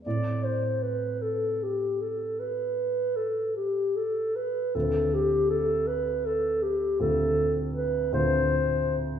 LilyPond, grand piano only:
\new Staff \with { instrumentName = "Grand piano" } { \time 12/8 \key a \minor \tempo 4. = 52 <a, a c' e'>1. | <d, a c' f'>2. <d, a c' f'>4. <d, a c' f'>4. | }